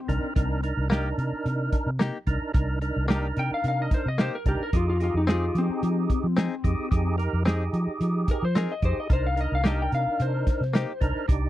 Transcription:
Already playing: electric slide guitar C4
0.08 fingered electric bass C2, tonewheel organ D4 D#4 A#4, kick, closed hi-hat
0.36 fingered electric bass C2, tonewheel organ D4 D#4 A#4, kick, closed hi-hat
0.63 tonewheel organ D4 D#4 A#4, closed hi-hat
0.77 fingered electric bass C2
0.90 clean electric guitar A#3 D#4 G4, tonewheel organ D4 D#4 A#4, snare, closed hi-hat
1.18 fingered electric bass C3, closed hi-hat
1.32 muted fingered electric bass stroke
1.45 fingered electric bass C3, closed hi-hat
1.72 kick, closed hi-hat
1.86 fingered electric bass C3
1.99 clean electric guitar A#3 D#4 G4, snare, closed hi-hat
2.27 fingered electric bass C2, tonewheel organ D4 D#4 A#4, kick, closed hi-hat
2.54 fingered electric bass C2, tonewheel organ D4 D#4 A#4, kick, closed hi-hat
2.81 tonewheel organ D4 D#4 A#4, closed hi-hat
2.96 fingered electric bass C2
3.08 clean electric guitar A#3 D#4 G4, tonewheel organ D4 D#4 A#4, snare, closed hi-hat
3.36 fingered electric bass C3, electric slide guitar G5, closed hi-hat
3.51 electric slide guitar F5, muted fingered electric bass stroke
3.64 fingered electric bass C3, closed hi-hat
3.68 electric slide guitar F5
3.82 electric slide guitar D#5
3.91 electric slide guitar C5, kick, snare, closed hi-hat
4.06 fingered electric bass C3, electric slide guitar D#5
4.18 clean electric guitar A#3 D#4 G4, electric slide guitar C5, snare, closed hi-hat
4.35 electric slide guitar A#4
4.46 fingered electric bass C2, tonewheel organ D4 D#4 A#4, electric slide guitar G4, kick, closed hi-hat
4.60 electric slide guitar A#4, muted fingered electric bass stroke
4.73 fingered electric bass F2, tonewheel organ D#4 G4 G#4, electric slide guitar F4, kick, closed hi-hat
4.90 electric slide guitar F4
5.00 tonewheel organ D#4 G4 G#4, electric slide guitar F4, closed hi-hat
5.14 fingered electric bass F2, electric slide guitar D#4
5.27 clean electric guitar C4 D#4 G#4, tonewheel organ D#4 G4 G#4, electric slide guitar F4, snare, closed hi-hat
5.55 fingered electric bass F3, electric slide guitar C4, closed hi-hat
5.69 muted fingered electric bass stroke
5.83 fingered electric bass F3, closed hi-hat
6.10 muted fingered electric bass stroke, kick, closed hi-hat
6.24 fingered electric bass F3
6.37 clean electric guitar C4 D#4 G#4, snare, closed hi-hat
6.64 fingered electric bass F2, tonewheel organ D#4 G4 G#4, kick, closed hi-hat
6.79 muted fingered electric bass stroke
6.91 fingered electric bass F2, tonewheel organ D#4 G4 G#4, kick, closed hi-hat
7.18 tonewheel organ D#4 G4 A#4, closed hi-hat
7.33 fingered electric bass F2
7.45 clean electric guitar C4 D#4 G#4, tonewheel organ D#4 G4 G#4, snare, closed hi-hat
7.73 fingered electric bass F3, closed hi-hat
7.87 muted fingered electric bass stroke
8.00 fingered electric bass F3, closed hi-hat
8.28 electric slide guitar A#4, muted fingered electric bass stroke, kick, closed hi-hat
8.42 fingered electric bass F3, electric slide guitar C5
8.55 clean electric guitar C4 D#4 G#4, electric slide guitar A#4, snare, closed hi-hat
8.72 electric slide guitar D#5
8.82 fingered electric bass F2, tonewheel organ D#4 G4 G#4, electric slide guitar C5, kick, closed hi-hat
8.97 electric slide guitar D#5, muted fingered electric bass stroke
9.09 fingered electric bass C2, tonewheel organ D4 D#4 A#4, electric slide guitar C5, kick, closed hi-hat
9.26 electric slide guitar F5
9.36 tonewheel organ D4 D#4 A#4, closed hi-hat
9.41 electric slide guitar D#5
9.52 fingered electric bass C2, electric slide guitar F5
9.63 clean electric guitar A#3 D#4 G4, tonewheel organ D4 D#4 A#4, snare, closed hi-hat
9.67 electric slide guitar D#5
9.82 electric slide guitar G5
9.92 fingered electric bass C3, electric slide guitar F5, closed hi-hat
10.07 muted fingered electric bass stroke
10.20 fingered electric bass C3, electric slide guitar C5, closed hi-hat
10.47 kick, snare, closed hi-hat
10.61 fingered electric bass C3, snare
10.73 clean electric guitar A#3 D#4 G4, snare, closed hi-hat
11.00 fingered electric bass C2, tonewheel organ D4 D#4 A#4, kick, closed hi-hat
11.28 fingered electric bass C2, tonewheel organ D4 D#4 G4, kick, closed hi-hat

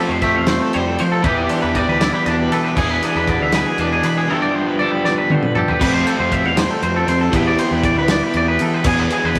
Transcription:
Already playing: clean electric guitar F3 G3 G4, overdriven electric guitar F3 A3 C4 F4
0.09 fingered electric bass F2, clean electric guitar C5
0.22 clean electric guitar A3 G4 E5, kick, ride
0.36 fingered electric bass E2, clean electric guitar A4 F5
0.47 clean electric guitar A3 C5, snare, ride
0.61 clean electric guitar A4
0.73 fingered electric bass F2, clean electric guitar G3 C5, ride
0.86 clean electric guitar A4
0.98 clean electric guitar F3 C5, fingered electric bass F3, ride
1.12 clean electric guitar A4
1.22 fingered electric bass E2, overdriven electric guitar E3 B3 E4 G4, clean electric guitar E3 B4, kick, ride
1.26 clean electric guitar G4
1.37 clean electric guitar D5
1.49 clean electric guitar D4 C5, ride
1.62 fingered electric bass E2, clean electric guitar B4
1.75 clean electric guitar G3 D5, kick, ride
1.88 fingered electric bass D2, clean electric guitar B4
2.00 clean electric guitar E4 D5, snare, ride
2.14 clean electric guitar G4 B4
2.26 fingered electric bass E2, clean electric guitar B2 D4 D5, ride
2.39 clean electric guitar B4
2.51 fingered electric bass E3, clean electric guitar A4 B4, ride
2.64 clean electric guitar B4
2.76 fingered electric bass E2, overdriven electric guitar E3 B3 D4 G#4, clean electric guitar E3 G#4, kick, crash
2.90 clean electric guitar B4
3.03 clean electric guitar D4 G#4, ride
3.15 fingered electric bass E2, clean electric guitar B4
3.28 clean electric guitar B3 B4 D5, kick, ride
3.41 fingered electric bass D2, clean electric guitar E5
3.52 clean electric guitar G#4 B4, snare, ride
3.67 clean electric guitar G#4
3.78 fingered electric bass E2, clean electric guitar B2 D4 B4, ride
3.93 clean electric guitar G#4
4.03 fingered electric bass E3, clean electric guitar B4, ride
4.18 clean electric guitar G#4
4.28 overdriven electric guitar G2 D3 F3 B3 D4 G4, clean electric guitar G2 E4 A4
4.42 clean electric guitar D5
4.55 clean electric guitar C5
4.67 clean electric guitar B4
4.79 clean electric guitar G3 A4 D5
4.92 clean electric guitar B4
5.05 clean electric guitar D5, snare
5.18 clean electric guitar B4
5.30 clean electric guitar D3 C5, high tom
5.43 clean electric guitar B4, mid tom
5.55 clean electric guitar G4 A4, mid tom
5.68 clean electric guitar B4, floor tom
5.80 fingered electric bass F2, overdriven electric guitar F3 A3 C4 F4, clean electric guitar B4, kick, crash
5.94 clean electric guitar C5
6.07 clean electric guitar A4, ride
6.19 fingered electric bass F2, clean electric guitar C5
6.32 clean electric guitar E5, kick, ride
6.45 fingered electric bass E2, clean electric guitar F5
6.57 clean electric guitar C5, snare, ride
6.71 clean electric guitar A4
6.82 fingered electric bass F2, clean electric guitar C5, ride
6.96 clean electric guitar A4
7.08 fingered electric bass F2, clean electric guitar C5, ride
7.21 clean electric guitar A4
7.32 fingered electric bass E2, overdriven electric guitar E3 B3 E4 G4, clean electric guitar B4, kick, ride
7.47 clean electric guitar D5
7.58 clean electric guitar C5, ride
7.71 fingered electric bass E2, clean electric guitar B4
7.84 clean electric guitar D5, kick, ride
7.98 fingered electric bass D2, clean electric guitar B4
8.08 clean electric guitar D5, snare, ride
8.24 clean electric guitar B4
8.34 fingered electric bass E2, clean electric guitar D5, ride
8.48 clean electric guitar B4
8.59 fingered electric bass E3, clean electric guitar A4, ride
8.74 clean electric guitar B4
8.84 fingered electric bass E2, overdriven electric guitar E3 B3 D4 G#4, clean electric guitar G#4, kick, crash
8.99 clean electric guitar B4
9.10 clean electric guitar G#4, ride
9.24 fingered electric bass E2, clean electric guitar B4
9.35 kick, ride

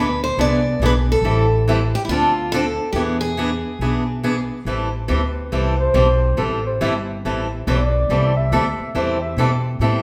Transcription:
Already playing: upright bass D2, steel-string acoustic guitar B4
0.24 steel-string acoustic guitar C5
0.37 upright bass C2, steel-string acoustic guitar E3 B3 D4 G#4 D5
0.80 upright bass B1, steel-string acoustic guitar E3 B3 D4 G#4
0.86 steel-string acoustic guitar B4
1.12 steel-string acoustic guitar A4
1.22 upright bass A1, steel-string acoustic guitar E3 G3 C4 E4 A4
1.68 steel-string acoustic guitar E3 G3 C4 E4 A4
1.95 steel-string acoustic guitar G4
2.05 upright bass D2, steel-string acoustic guitar E4
2.09 steel-string acoustic guitar D3 F3 C4 D4 F4 A4
2.52 steel-string acoustic guitar D3 F3 C4 D4 A4
2.93 upright bass E2, steel-string acoustic guitar E3 B3 D4 G4 G#4
3.21 steel-string acoustic guitar G#4
3.37 steel-string acoustic guitar E3 B3 D4 G#4
3.79 upright bass B1, steel-string acoustic guitar E3 B3 D4 G#4
4.23 steel-string acoustic guitar E3 B3 D4 G#4
4.65 upright bass A1, steel-string acoustic guitar E3 G3 C4 E4 A4
5.08 upright bass D2, steel-string acoustic guitar E3 G3 C4 E4 A4, clarinet B4
5.52 upright bass C2, steel-string acoustic guitar E3 G3 C4 E4 A4
5.80 clarinet C5
5.94 upright bass B1, steel-string acoustic guitar E3 G3 C4 E4 A4
6.37 upright bass A1, steel-string acoustic guitar E3 G3 C4 E4 A4, clarinet A4
6.67 clarinet C5
6.81 upright bass G1, steel-string acoustic guitar E3 G3 C4 E4 A4
7.25 upright bass A1, steel-string acoustic guitar E3 G3 C4 E4 A4
7.67 upright bass B1, steel-string acoustic guitar E3 G3 C4 E4 A4, clarinet D5
8.09 upright bass C2, steel-string acoustic guitar E3 G3 C4 E4 A4
8.37 clarinet E5
8.52 upright bass D2, steel-string acoustic guitar E3 G3 C4 E4 A4
8.80 muted upright bass stroke
8.95 upright bass E2, steel-string acoustic guitar E3 G3 C4 E4 A4, clarinet C5
9.22 clarinet E5
9.37 upright bass B2, steel-string acoustic guitar E3 G3 C4 E4 A4
9.79 upright bass A2, steel-string acoustic guitar E3 G3 C4 E4 A4

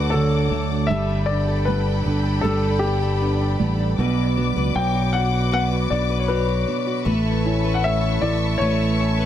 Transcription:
Already playing: fingered electric bass D2, felt piano D3 A3 F#4, nylon-string guitar D3 F#3 A3 D4 F#4, string section A4 D5 F#5 D6, grand piano B4
0.10 felt piano D3, nylon-string guitar F#3, grand piano A4
0.33 nylon-string guitar D4
0.51 fingered electric bass D2, nylon-string guitar A3, felt piano A3
0.72 nylon-string guitar D4
0.87 fingered electric bass G1, felt piano G3, nylon-string guitar G3, string section A4 G5 B5, grand piano E5
0.91 nylon-string guitar A4
1.10 nylon-string guitar D4
1.26 nylon-string guitar B3, felt piano D4, grand piano D5
1.48 nylon-string guitar A4
1.65 felt piano G3, nylon-string guitar B3, grand piano B4
1.87 nylon-string guitar D4
2.06 fingered electric bass G1, nylon-string guitar B3, felt piano D4
2.25 nylon-string guitar D4
2.41 fingered electric bass G1, felt piano G3, nylon-string guitar G3 A4, grand piano A4
2.64 nylon-string guitar D4
2.79 grand piano G4
2.84 nylon-string guitar B3
3.03 nylon-string guitar A4
3.21 nylon-string guitar B3, felt piano D4
3.41 nylon-string guitar D4
3.59 fingered electric bass A1, felt piano G3, nylon-string guitar B3
3.80 nylon-string guitar D4
3.98 fingered electric bass B1, nylon-string guitar B2 B4, felt piano B3, string section B4 D6
4.18 nylon-string guitar F#4
4.37 felt piano F#3, nylon-string guitar D4
4.56 fingered electric bass C#2, nylon-string guitar B4
4.75 fingered electric bass B1, nylon-string guitar F#3, felt piano B3, grand piano G5
4.95 nylon-string guitar F#4
5.13 nylon-string guitar D4, felt piano F#4, grand piano F#5
5.33 nylon-string guitar F#4
5.52 nylon-string guitar B2 B4, felt piano B3, grand piano F#5
5.72 nylon-string guitar F#4
5.90 fingered electric bass B1, nylon-string guitar D4, grand piano D5
6.10 nylon-string guitar B4
6.20 grand piano C#5
6.28 nylon-string guitar F#3, felt piano F#4, grand piano B4
6.48 nylon-string guitar F#4
6.67 felt piano B3, nylon-string guitar D4
6.87 nylon-string guitar F#4
7.05 fingered electric bass A1, nylon-string guitar A3 B4, felt piano A3, string section E5 A5 C#6
7.25 nylon-string guitar E4
7.45 nylon-string guitar C#4, felt piano E4
7.64 nylon-string guitar B4
7.74 grand piano F#5
7.83 felt piano A3, nylon-string guitar C#4, grand piano E5
8.03 nylon-string guitar E4
8.21 fingered electric bass A1, felt piano E4, grand piano D5
8.42 nylon-string guitar E4
8.58 fingered electric bass A1, felt piano A3, nylon-string guitar A3, grand piano C#5
8.62 nylon-string guitar B4
8.80 nylon-string guitar E4
8.99 nylon-string guitar C#4
9.19 nylon-string guitar B4

